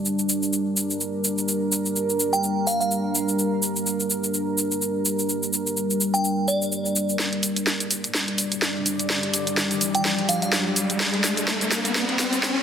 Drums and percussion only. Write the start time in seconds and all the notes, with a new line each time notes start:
0.05 cabasa
0.19 cabasa
0.29 cabasa
0.43 cabasa
0.53 cabasa
0.77 cabasa
0.90 cabasa
1.01 cabasa
1.24 cabasa
1.38 cabasa
1.48 cabasa
1.72 cabasa
1.86 cabasa
1.96 cabasa
2.10 cabasa
2.20 cabasa
2.33 cabasa
2.44 cabasa
2.67 cabasa
2.81 cabasa
2.91 cabasa
3.15 cabasa
3.29 cabasa
3.39 cabasa
3.63 cabasa
3.76 cabasa
3.86 cabasa
4.00 cabasa
4.10 cabasa
4.24 cabasa
4.34 cabasa
4.58 cabasa
4.72 cabasa
4.82 cabasa
5.05 cabasa
5.19 cabasa
5.29 cabasa
5.43 cabasa
5.53 cabasa
5.67 cabasa
5.77 cabasa
5.91 cabasa
6.01 cabasa
6.14 cabasa
6.25 cabasa
6.48 cabasa
6.62 cabasa
6.72 cabasa
6.86 cabasa
6.96 cabasa
7.09 cabasa
7.19 snare, cabasa
7.33 closed hi-hat
7.43 open hi-hat, cabasa
7.56 closed hi-hat, cabasa
7.67 snare, cabasa
7.80 closed hi-hat, cabasa
7.91 open hi-hat, cabasa
8.04 closed hi-hat, cabasa
8.14 snare, cabasa
8.28 closed hi-hat
8.38 open hi-hat, cabasa
8.52 closed hi-hat, cabasa
8.62 snare, cabasa
8.86 open hi-hat, cabasa
8.99 closed hi-hat, cabasa
9.10 snare, cabasa
9.23 closed hi-hat
9.34 open hi-hat, cabasa
9.47 closed hi-hat, cabasa
9.57 snare, cabasa
9.71 closed hi-hat, cabasa
9.81 open hi-hat, cabasa
9.95 closed hi-hat, cabasa
10.05 snare, cabasa
10.18 closed hi-hat
10.29 open hi-hat, cabasa
10.42 closed hi-hat, cabasa
10.53 snare, cabasa
10.76 open hi-hat, cabasa
10.90 closed hi-hat, cabasa
11.00 snare, cabasa
11.14 closed hi-hat
11.24 snare, open hi-hat, cabasa
11.37 closed hi-hat, cabasa
11.48 snare, cabasa
11.61 closed hi-hat, cabasa
11.71 snare, open hi-hat, cabasa
11.85 closed hi-hat, cabasa
11.95 snare, cabasa
12.09 closed hi-hat
12.19 snare, open hi-hat, cabasa
12.33 closed hi-hat, cabasa
12.43 snare, cabasa